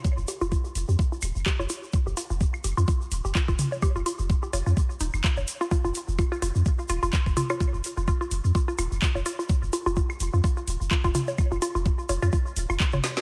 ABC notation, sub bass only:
X:1
M:4/4
L:1/16
Q:"Swing 16ths" 1/4=127
K:Ebmix
V:1 name="Sub bass" clef=bass
z F,,, z F,,, z2 F,,, F,, z2 E,,, F,,, z F,,, z2 | z F,,, z F,,, z2 F,,, F,, z2 E,,, F,,, z F,,, z2 | z F,,, z F,,, z2 F,,, F,, z2 E,,, F,,, z F,,, z2 | z F,,, z F,,, z2 F,,, F,, z2 E,,, F,,, z F,,, z2 |
z F,,, z F,,, z2 F,,, F,, z2 E,,, F,,, z F,,, z2 | z F,,, z F,,, z2 F,,, F,, z2 E,,, F,,, z F,,, z2 | z F,,, z F,,, z2 F,,, F,, z2 E,,, F,,, z F,,, z2 |]